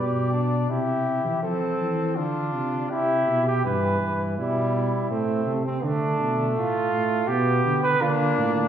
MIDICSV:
0, 0, Header, 1, 5, 480
1, 0, Start_track
1, 0, Key_signature, -1, "major"
1, 0, Tempo, 730816
1, 947, Time_signature, 3, 2, 24, 8
1, 5702, End_track
2, 0, Start_track
2, 0, Title_t, "Trumpet"
2, 0, Program_c, 0, 56
2, 0, Note_on_c, 0, 74, 49
2, 451, Note_off_c, 0, 74, 0
2, 459, Note_on_c, 0, 67, 57
2, 934, Note_off_c, 0, 67, 0
2, 938, Note_on_c, 0, 69, 59
2, 1422, Note_on_c, 0, 65, 52
2, 1432, Note_off_c, 0, 69, 0
2, 1904, Note_off_c, 0, 65, 0
2, 1908, Note_on_c, 0, 67, 59
2, 2383, Note_off_c, 0, 67, 0
2, 5258, Note_on_c, 0, 62, 80
2, 5702, Note_off_c, 0, 62, 0
2, 5702, End_track
3, 0, Start_track
3, 0, Title_t, "Flugelhorn"
3, 0, Program_c, 1, 56
3, 0, Note_on_c, 1, 67, 55
3, 208, Note_off_c, 1, 67, 0
3, 212, Note_on_c, 1, 62, 57
3, 457, Note_on_c, 1, 64, 53
3, 467, Note_off_c, 1, 62, 0
3, 934, Note_off_c, 1, 64, 0
3, 938, Note_on_c, 1, 60, 67
3, 1417, Note_off_c, 1, 60, 0
3, 1423, Note_on_c, 1, 62, 68
3, 1900, Note_off_c, 1, 62, 0
3, 1912, Note_on_c, 1, 64, 70
3, 2268, Note_off_c, 1, 64, 0
3, 2275, Note_on_c, 1, 67, 78
3, 2393, Note_off_c, 1, 67, 0
3, 2396, Note_on_c, 1, 71, 74
3, 2763, Note_off_c, 1, 71, 0
3, 2875, Note_on_c, 1, 64, 67
3, 3109, Note_off_c, 1, 64, 0
3, 3119, Note_on_c, 1, 64, 64
3, 3350, Note_off_c, 1, 64, 0
3, 3356, Note_on_c, 1, 60, 64
3, 3657, Note_off_c, 1, 60, 0
3, 3839, Note_on_c, 1, 62, 81
3, 4284, Note_off_c, 1, 62, 0
3, 4318, Note_on_c, 1, 65, 81
3, 4778, Note_on_c, 1, 67, 86
3, 4788, Note_off_c, 1, 65, 0
3, 5138, Note_off_c, 1, 67, 0
3, 5144, Note_on_c, 1, 71, 91
3, 5264, Note_on_c, 1, 65, 76
3, 5274, Note_off_c, 1, 71, 0
3, 5702, Note_off_c, 1, 65, 0
3, 5702, End_track
4, 0, Start_track
4, 0, Title_t, "Trombone"
4, 0, Program_c, 2, 57
4, 2391, Note_on_c, 2, 52, 80
4, 2847, Note_off_c, 2, 52, 0
4, 2879, Note_on_c, 2, 55, 77
4, 3344, Note_off_c, 2, 55, 0
4, 3357, Note_on_c, 2, 57, 74
4, 3704, Note_off_c, 2, 57, 0
4, 3713, Note_on_c, 2, 60, 74
4, 3840, Note_on_c, 2, 57, 80
4, 3850, Note_off_c, 2, 60, 0
4, 4786, Note_off_c, 2, 57, 0
4, 4791, Note_on_c, 2, 59, 69
4, 5256, Note_off_c, 2, 59, 0
4, 5269, Note_on_c, 2, 58, 78
4, 5702, Note_off_c, 2, 58, 0
4, 5702, End_track
5, 0, Start_track
5, 0, Title_t, "Tuba"
5, 0, Program_c, 3, 58
5, 0, Note_on_c, 3, 47, 72
5, 457, Note_off_c, 3, 47, 0
5, 461, Note_on_c, 3, 48, 64
5, 816, Note_off_c, 3, 48, 0
5, 821, Note_on_c, 3, 52, 64
5, 877, Note_off_c, 3, 52, 0
5, 942, Note_on_c, 3, 53, 68
5, 1182, Note_off_c, 3, 53, 0
5, 1187, Note_on_c, 3, 52, 59
5, 1427, Note_on_c, 3, 50, 66
5, 1437, Note_off_c, 3, 52, 0
5, 1671, Note_on_c, 3, 48, 59
5, 1681, Note_off_c, 3, 50, 0
5, 1906, Note_off_c, 3, 48, 0
5, 1910, Note_on_c, 3, 48, 60
5, 2149, Note_off_c, 3, 48, 0
5, 2153, Note_on_c, 3, 47, 66
5, 2390, Note_off_c, 3, 47, 0
5, 2398, Note_on_c, 3, 43, 71
5, 2632, Note_off_c, 3, 43, 0
5, 2637, Note_on_c, 3, 43, 58
5, 2878, Note_on_c, 3, 47, 69
5, 2888, Note_off_c, 3, 43, 0
5, 3239, Note_off_c, 3, 47, 0
5, 3350, Note_on_c, 3, 45, 68
5, 3584, Note_off_c, 3, 45, 0
5, 3589, Note_on_c, 3, 48, 79
5, 3823, Note_off_c, 3, 48, 0
5, 3831, Note_on_c, 3, 50, 83
5, 4063, Note_off_c, 3, 50, 0
5, 4069, Note_on_c, 3, 47, 65
5, 4310, Note_on_c, 3, 45, 74
5, 4320, Note_off_c, 3, 47, 0
5, 4544, Note_off_c, 3, 45, 0
5, 4548, Note_on_c, 3, 45, 70
5, 4778, Note_off_c, 3, 45, 0
5, 4781, Note_on_c, 3, 47, 76
5, 5015, Note_off_c, 3, 47, 0
5, 5025, Note_on_c, 3, 50, 80
5, 5258, Note_off_c, 3, 50, 0
5, 5263, Note_on_c, 3, 50, 80
5, 5498, Note_off_c, 3, 50, 0
5, 5503, Note_on_c, 3, 45, 72
5, 5702, Note_off_c, 3, 45, 0
5, 5702, End_track
0, 0, End_of_file